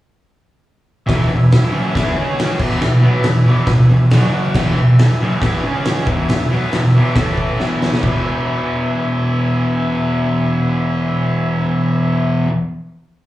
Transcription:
1.06 1.28 E2 medium
1.06 1.28 B2 medium
1.06 1.29 E3 loud
1.06 2.14 B4 medium
1.06 2.13 E5 medium
1.06 2.13 G#5 medium
1.06 kick loud
1.06 snare loud
1.06 open hi-hat medium
1.29 1.47 E2 medium
1.29 1.47 B2 medium
1.51 snare loud
1.51 open hi-hat medium
1.71 1.94 F#2 medium
1.71 1.94 C#3 loud
1.71 1.94 F#3 loud
1.94 2.14 E3 loud
1.94 2.15 B3 loud
1.94 2.16 E4 loud
1.94 kick loud
1.94 snare loud
1.94 open hi-hat medium
2.15 2.58 C#3 medium
2.15 2.59 G#3 loud
2.15 2.59 C#4 loud
2.15 2.56 G#4 medium
2.15 2.60 C#5 medium
2.15 2.60 G#5 medium
2.39 snare loud
2.39 open hi-hat medium
2.57 2.80 E2 medium
2.57 2.80 B2 medium
2.57 2.82 E3 loud
2.57 4.07 G#4 medium
2.57 4.08 B4 medium
2.57 3.85 E5 medium
2.57 kick loud
2.57 crash loud
2.81 2.99 E2 medium
2.81 2.99 B2 medium
2.81 snare loud
3.02 3.23 B2 medium
3.02 3.24 F#3 medium
3.02 3.24 B3 loud
3.23 3.42 E2 medium
3.23 3.42 B2 medium
3.23 snare loud
3.23 open hi-hat medium
3.46 3.66 E2 loud
3.46 3.67 B2 loud
3.46 3.68 E3 loud
3.66 3.85 E2 medium
3.66 3.86 B2 medium
3.66 kick loud
3.66 snare loud
3.66 open hi-hat medium
3.86 4.07 E2 medium
3.86 4.07 B2 medium
3.86 4.08 E5 medium
4.09 4.54 F#4 medium
4.09 4.54 C#5 medium
4.09 4.55 F#5 medium
4.09 snare loud
4.09 open hi-hat medium
4.13 4.55 F#2 medium
4.13 4.56 C#3 loud
4.13 4.56 F#3 loud
4.54 4.77 E2 medium
4.54 4.77 B2 loud
4.54 4.78 E3 loud
4.54 5.62 G#4 medium
4.54 5.61 B4 medium
4.54 5.62 E5 medium
4.54 kick loud
4.54 snare loud
4.54 crash loud
4.79 4.95 E2 medium
4.79 4.96 B2 medium
4.98 snare loud
4.98 open hi-hat medium
5.21 5.42 F#2 medium
5.21 5.42 C#3 medium
5.21 5.43 F#3 loud
5.42 5.62 E3 medium
5.42 5.63 B3 loud
5.42 5.64 E4 loud
5.42 kick loud
5.42 snare loud
5.42 open hi-hat medium
5.62 6.06 C#3 medium
5.62 6.07 G#3 loud
5.62 6.07 C#4 loud
5.62 6.07 G#4 medium
5.62 6.08 C#5 medium
5.62 6.06 G#5 medium
5.85 snare loud
5.85 open hi-hat medium
6.04 6.27 E2 medium
6.04 6.28 B2 medium
6.04 6.29 E3 loud
6.04 7.13 B4 medium
6.04 7.13 E5 medium
6.04 7.14 G#5 medium
6.04 kick loud
6.28 6.46 E2 medium
6.28 6.47 B2 medium
6.28 snare loud
6.28 open hi-hat medium
6.50 6.72 B2 medium
6.50 6.73 F#3 loud
6.50 6.73 B3 medium
6.72 6.90 E2 medium
6.72 6.91 B2 medium
6.72 snare loud
6.72 open hi-hat medium
6.95 7.16 E2 medium
6.95 7.15 B2 loud
6.95 7.15 E3 loud
7.15 7.59 A2 medium
7.15 7.59 E3 loud
7.15 7.59 A3 loud
7.15 7.60 A4 medium
7.15 7.59 E5 medium
7.15 7.40 A5 medium
7.15 kick loud
7.15 snare loud
7.15 open hi-hat medium
7.37 kick medium
7.41 7.60 A5 medium
7.59 8.02 E2 medium
7.59 8.03 B2 loud
7.59 8.04 E3 medium
7.59 8.01 B4 medium
7.59 8.01 E5 medium
7.59 8.01 G#5 medium
7.59 snare medium
7.82 snare loud
7.94 snare medium
8.02 12.46 E2 medium
8.02 12.48 B2 medium
8.02 12.26 B4 medium
8.02 12.25 E5 medium
8.02 12.26 G#5 medium
8.02 kick loud
8.02 crash medium
8.07 12.49 E3 loud

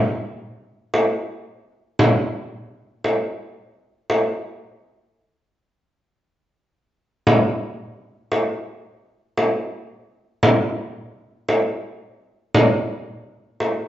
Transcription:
0.94 frame drum medium
1.99 frame drum medium
3.04 frame drum medium
4.10 frame drum medium
7.27 frame drum medium
8.32 frame drum medium
9.38 frame drum medium
10.43 frame drum loud
11.49 frame drum medium
12.54 frame drum loud
13.60 frame drum medium

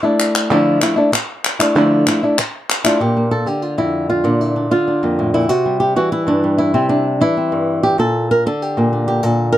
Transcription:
0.03 0.50 A3 soft
0.03 0.51 D4 soft
0.03 0.52 E4 medium
0.20 clap medium
0.35 clap medium
0.50 0.81 D3 medium
0.50 0.80 F3 medium
0.50 0.80 A3 medium
0.50 0.81 D4 medium
0.50 0.81 E4 loud
0.50 clap soft
0.81 0.96 F3 medium
0.81 0.96 A3 medium
0.81 0.96 D4 medium
0.81 0.95 E4 medium
0.81 clap medium
0.96 1.12 A3 soft
0.96 1.12 D4 medium
0.96 1.12 E4 medium
1.12 muted nylon-string guitar stroke medium
1.12 clap medium
1.45 clap medium
1.59 1.75 A3 soft
1.59 1.75 D4 medium
1.59 1.74 E4 medium
1.59 clap medium
1.75 2.06 D3 medium
1.75 2.06 F3 medium
1.75 2.06 A3 medium
1.75 2.06 D4 medium
1.75 2.06 E4 medium
1.75 clap soft
2.07 2.22 F3 medium
2.07 2.22 A3 medium
2.07 2.22 D4 medium
2.07 2.22 E4 medium
2.07 clap medium
2.23 2.38 A3 soft
2.23 2.38 D4 medium
2.23 2.37 E4 medium
2.38 muted nylon-string guitar stroke medium
2.38 clap medium
2.70 clap medium
2.84 3.00 A3 soft
2.84 3.00 D4 soft
2.84 2.99 E4 medium
2.84 3.01 F4 medium
2.84 clap medium
3.00 3.47 A#2 medium
3.00 3.31 G4 medium
3.17 4.23 A#3 soft
3.31 3.47 A4 medium
3.46 4.70 D3 medium
3.46 3.62 G4 medium
3.62 3.78 F4 medium
3.78 4.23 F2 medium
3.78 4.09 E4 medium
4.10 4.41 F4 medium
4.24 4.71 A#2 medium
4.24 4.55 D4 medium
4.41 4.71 E4 medium
4.56 4.86 D4 soft
4.71 5.49 D3 medium
4.71 5.34 F4 medium
4.88 5.48 D4 soft
5.03 5.48 F2 medium
5.03 5.48 A#3 soft
5.19 5.33 A2 medium
5.34 5.49 A#2 medium
5.34 5.49 E4 medium
5.49 5.96 C3 medium
5.49 5.80 F#4 medium
5.66 6.42 G3 soft
5.80 5.96 G4 medium
5.96 6.72 E3 medium
5.96 6.12 F#4 medium
6.12 6.57 E4 medium
6.27 6.72 G2 medium
6.27 6.74 D4 medium
6.44 7.99 G3 soft
6.58 7.05 E4 medium
6.74 7.21 C3 medium
6.74 6.89 C4 medium
6.89 7.36 D4 medium
7.21 7.97 E3 medium
7.21 7.83 E4 medium
7.37 7.97 C4 soft
7.52 7.97 G2 medium
7.83 7.99 G4 medium
7.98 8.45 A#2 medium
7.98 8.30 A4 medium
8.31 8.46 A#4 medium
8.46 9.58 D3 medium
8.46 8.62 A4 loud
8.62 9.06 G4 medium
8.77 9.22 A#2 medium
8.77 9.22 A#3 soft
8.93 9.22 D4 soft
9.08 9.23 G4 medium
9.23 9.58 A#2 medium
9.23 9.52 A4 medium
9.52 9.58 A#4 loud

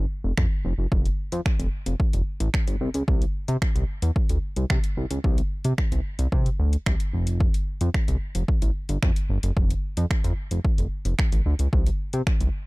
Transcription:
0.24 0.33 F1 medium
0.37 0.46 F2 loud
0.37 finger snap loud
0.37 kick loud
0.65 0.73 F1 medium
0.78 0.87 F#1 medium
0.92 1.09 F1 loud
0.92 kick loud
1.05 closed hi-hat soft
1.32 1.41 F2 loud
1.32 closed hi-hat medium
1.46 finger snap loud
1.46 kick loud
1.59 1.68 F1 medium
1.59 closed hi-hat medium
1.86 1.95 F1 medium
1.86 closed hi-hat medium
2.00 kick loud
2.13 2.22 F1 medium
2.13 closed hi-hat soft
2.40 2.49 A1 loud
2.40 closed hi-hat medium
2.54 finger snap loud
2.54 kick loud
2.67 2.76 G1 medium
2.67 closed hi-hat medium
2.81 2.89 C2 loud
2.94 3.03 C#2 medium
2.94 closed hi-hat medium
3.08 3.25 C2 loud
3.08 kick loud
3.22 closed hi-hat soft
3.48 3.57 C3 loud
3.48 closed hi-hat medium
3.62 finger snap loud
3.62 kick loud
3.75 3.84 C2 medium
3.75 closed hi-hat medium
4.02 4.11 E2 medium
4.02 closed hi-hat medium
4.16 kick loud
4.29 4.38 D2 medium
4.29 closed hi-hat medium
4.56 4.65 C2 medium
4.56 closed hi-hat medium
4.70 4.79 C3 loud
4.70 finger snap loud
4.70 kick loud
4.84 closed hi-hat medium
4.97 5.06 C2 medium
5.11 5.19 C#2 medium
5.11 closed hi-hat medium
5.24 5.41 C2 loud
5.24 kick loud
5.38 closed hi-hat soft
5.64 5.73 C3 medium
5.64 closed hi-hat medium
5.78 finger snap loud
5.78 kick loud
5.92 6.00 C2 medium
5.92 closed hi-hat medium
6.19 6.27 C2 loud
6.19 closed hi-hat medium
6.32 6.49 C3 loud
6.32 kick loud
6.46 closed hi-hat medium
6.59 6.76 D2 medium
6.73 closed hi-hat medium
6.86 6.95 C2 medium
6.86 finger snap loud
6.86 kick loud
7.00 closed hi-hat medium
7.13 7.48 F1 loud
7.27 closed hi-hat medium
7.40 kick loud
7.54 closed hi-hat medium
7.81 7.90 F2 medium
7.81 closed hi-hat medium
7.94 finger snap loud
7.94 kick loud
8.08 8.17 C2 loud
8.08 closed hi-hat medium
8.35 8.44 F1 medium
8.35 closed hi-hat medium
8.48 kick loud
8.62 8.71 A1 loud
8.62 closed hi-hat medium
8.89 8.98 G1 medium
8.89 closed hi-hat medium
9.03 9.11 F2 loud
9.03 finger snap loud
9.03 kick loud
9.16 closed hi-hat medium
9.30 9.38 G1 medium
9.43 9.52 F#1 medium
9.43 closed hi-hat medium
9.57 9.74 F1 loud
9.57 kick loud
9.70 closed hi-hat medium
9.97 10.06 F2 loud
9.97 closed hi-hat medium
10.11 finger snap loud
10.11 kick loud
10.24 10.33 F2 loud
10.24 closed hi-hat medium
10.51 10.60 F1 medium
10.51 closed hi-hat medium
10.65 kick loud
10.78 10.87 F1 medium
10.78 closed hi-hat medium
11.05 11.14 F1 loud
11.05 closed hi-hat medium
11.19 finger snap loud
11.19 kick loud
11.32 11.41 A1 medium
11.32 closed hi-hat medium
11.46 11.54 D2 medium
11.59 11.68 C#2 medium
11.59 closed hi-hat medium
11.73 11.90 C2 loud
11.73 kick loud
11.87 closed hi-hat medium
12.13 12.22 C3 medium
12.13 closed hi-hat medium
12.27 finger snap loud
12.27 kick loud
12.40 12.49 C2 medium
12.40 closed hi-hat medium

